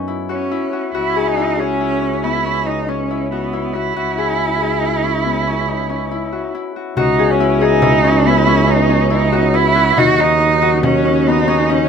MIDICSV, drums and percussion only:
0, 0, Header, 1, 2, 480
1, 0, Start_track
1, 0, Key_signature, 4, "minor"
1, 0, Tempo, 430416
1, 1047, Time_signature, 7, 2, 24, 8
1, 13259, End_track
2, 0, Start_track
2, 0, Title_t, "Frame drum"
2, 7770, Note_on_c, 9, 64, 60
2, 7882, Note_off_c, 9, 64, 0
2, 8722, Note_on_c, 9, 64, 74
2, 8833, Note_off_c, 9, 64, 0
2, 9444, Note_on_c, 9, 64, 45
2, 9556, Note_off_c, 9, 64, 0
2, 9688, Note_on_c, 9, 64, 20
2, 9799, Note_off_c, 9, 64, 0
2, 9928, Note_on_c, 9, 64, 20
2, 10039, Note_off_c, 9, 64, 0
2, 10412, Note_on_c, 9, 64, 49
2, 10523, Note_off_c, 9, 64, 0
2, 10885, Note_on_c, 9, 64, 23
2, 10997, Note_off_c, 9, 64, 0
2, 11123, Note_on_c, 9, 64, 65
2, 11235, Note_off_c, 9, 64, 0
2, 11846, Note_on_c, 9, 64, 19
2, 11958, Note_off_c, 9, 64, 0
2, 12080, Note_on_c, 9, 64, 72
2, 12191, Note_off_c, 9, 64, 0
2, 12326, Note_on_c, 9, 64, 20
2, 12437, Note_off_c, 9, 64, 0
2, 12803, Note_on_c, 9, 64, 52
2, 12914, Note_off_c, 9, 64, 0
2, 13259, End_track
0, 0, End_of_file